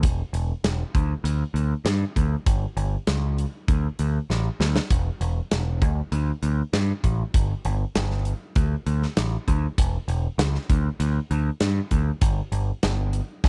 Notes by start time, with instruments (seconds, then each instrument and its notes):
0.03 picked electric bass E1, kick, closed hi-hat
0.33 picked electric bass E1, closed hi-hat
0.64 picked electric bass E1, snare, closed hi-hat
0.95 picked electric bass D2, kick, closed hi-hat
1.24 picked electric bass D2, closed hi-hat
1.54 picked electric bass D2, closed hi-hat
1.85 picked electric bass G2, snare, closed hi-hat
2.16 picked electric bass D2, kick, closed hi-hat
2.46 picked electric bass G1, kick, closed hi-hat
2.77 picked electric bass G1, closed hi-hat
3.07 picked electric bass C#2, snare, closed hi-hat
3.38 closed hi-hat
3.68 picked electric bass D2, kick, closed hi-hat
3.99 picked electric bass D2, closed hi-hat
4.30 picked electric bass A1, snare
4.60 picked electric bass D2, snare
4.76 snare
4.90 picked electric bass E1, kick, closed hi-hat
5.21 picked electric bass E1, closed hi-hat
5.51 picked electric bass E1, snare, closed hi-hat
5.82 picked electric bass D2, kick, closed hi-hat
6.12 picked electric bass D2, closed hi-hat
6.43 picked electric bass D2, closed hi-hat
6.73 picked electric bass G2, snare, closed hi-hat
7.04 picked electric bass A1, kick, closed hi-hat
7.34 picked electric bass G1, kick, closed hi-hat
7.65 picked electric bass G1, closed hi-hat
7.95 picked electric bass G1, snare, closed hi-hat
8.11 snare
8.25 closed hi-hat
8.56 picked electric bass D2, kick, closed hi-hat
8.86 picked electric bass D2, closed hi-hat
9.02 snare
9.17 picked electric bass A1, snare, closed hi-hat
9.48 picked electric bass D2, kick, closed hi-hat
9.78 picked electric bass E1, kick, closed hi-hat
10.08 picked electric bass E1, closed hi-hat
10.38 picked electric bass C#2, snare, closed hi-hat
10.54 snare
10.70 picked electric bass D2, kick, closed hi-hat
11.00 picked electric bass D2, closed hi-hat
11.31 picked electric bass D2, closed hi-hat
11.60 picked electric bass G2, snare, closed hi-hat
11.91 picked electric bass D2, kick, closed hi-hat
12.21 picked electric bass G1, kick, closed hi-hat
12.52 picked electric bass G1, closed hi-hat
12.83 picked electric bass G1, snare, closed hi-hat
13.13 closed hi-hat
13.44 picked electric bass G1, kick, snare